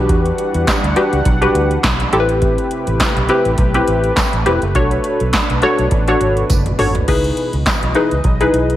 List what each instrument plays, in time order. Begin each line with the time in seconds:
Already playing: analog synth pad E3 G3 D4 F#5, analog polysynth D4 F#4 G4 B4
0.09 fingered electric bass E2, kick, closed hi-hat
0.26 closed hi-hat
0.38 closed hi-hat
0.54 fingered electric bass E2, closed hi-hat
0.67 kick, snare, clap, closed hi-hat, tambourine
0.83 fingered electric bass D2, closed hi-hat
0.96 analog polysynth D4 F#4 G4 B4, closed hi-hat
1.13 fingered electric bass C#2, closed hi-hat
1.25 fingered electric bass B1, kick, closed hi-hat
1.41 analog polysynth D4 F#4 G4 B4, closed hi-hat
1.55 fingered electric bass D2, closed hi-hat
1.71 closed hi-hat
1.84 fingered electric bass B1, kick, snare, clap, closed hi-hat, tambourine
2.00 closed hi-hat
2.13 fingered electric bass A1, analog synth pad C3 A3 G4 B4, analog polysynth C4 E4 G4 A4, closed hi-hat
2.20 analog polysynth B4
2.29 closed hi-hat
2.42 kick, closed hi-hat
2.58 closed hi-hat
2.71 closed hi-hat
2.87 fingered electric bass A1, closed hi-hat
3.00 kick, snare, clap, closed hi-hat, tambourine
3.17 fingered electric bass B1, closed hi-hat
3.29 analog polysynth C4 E4 G4 B4, closed hi-hat
3.45 fingered electric bass A1, closed hi-hat
3.58 fingered electric bass B1, kick, closed hi-hat
3.74 analog polysynth C4 E4 G4 B4, closed hi-hat
3.88 fingered electric bass A1, closed hi-hat
4.04 closed hi-hat
4.17 kick, snare, clap, closed hi-hat, tambourine
4.33 fingered electric bass A1, closed hi-hat
4.46 fingered electric bass E1, analog polysynth C4 E4 G4 B4, closed hi-hat
4.62 fingered electric bass F#1, closed hi-hat
4.75 fingered electric bass B1, analog synth pad B2 D4, analog polysynth D4 F#4 A4 C#5, kick, closed hi-hat
4.91 closed hi-hat
5.04 closed hi-hat
5.20 fingered electric bass B1, closed hi-hat
5.33 kick, snare, clap, closed hi-hat, tambourine
5.50 fingered electric bass B1, closed hi-hat
5.62 analog polysynth D4 F#4 A4 C#5, closed hi-hat
5.79 fingered electric bass B1, closed hi-hat
5.91 fingered electric bass A1, kick, closed hi-hat
6.08 analog polysynth D4 F#4 A4 C#5, closed hi-hat
6.21 fingered electric bass G#1, closed hi-hat
6.37 closed hi-hat
6.50 fingered electric bass F#1, kick, closed hi-hat, high tom, tambourine
6.66 closed hi-hat, mid tom
6.79 fingered electric bass G#1, analog polysynth D4 F#4 A4 C#5, mid tom, open hi-hat
6.95 closed hi-hat, floor tom
7.08 fingered electric bass C#2, analog synth pad E3 D#5, analog polysynth D#4 E4 G#4 B4, kick, crash
7.24 closed hi-hat
7.37 closed hi-hat
7.53 fingered electric bass C#2, closed hi-hat
7.66 kick, snare, clap, closed hi-hat, tambourine
7.83 fingered electric bass B1, closed hi-hat
7.95 analog polysynth D#4 E4 G#4 B4, closed hi-hat
8.11 fingered electric bass C#2, closed hi-hat
8.24 fingered electric bass B1, kick, closed hi-hat
8.41 analog polysynth D#4 E4 G#4 B4, closed hi-hat
8.54 fingered electric bass B1, closed hi-hat
8.70 closed hi-hat